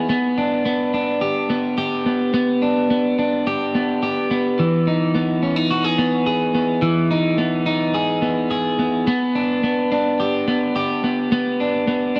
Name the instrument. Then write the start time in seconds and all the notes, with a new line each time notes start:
clean electric guitar
Already playing: D#4 G#4
0.09 B3
0.38 D4
0.65 B3
0.94 D4
1.21 G4
1.50 B3
1.78 G4
2.06 B3
2.34 B3
2.62 D4
2.90 B3
3.19 D4
3.47 G4
3.75 B3
4.03 G4
4.31 B3
4.59 E3
4.87 D#4
5.15 B3
5.43 C#4
5.56 D#4
5.71 F#4
5.84 G#4
5.98 B3
6.27 G#4
6.55 B3
6.82 E3
7.11 D#4
7.38 B3
7.66 D#4
7.94 G#4
8.22 B3
8.51 G#4
8.79 B3
9.07 B3
9.35 D4
9.63 B3
9.92 D4
10.20 G4
10.48 B3
10.76 G4
11.04 B3
11.32 B3
11.60 D4
11.88 B3
12.16 D4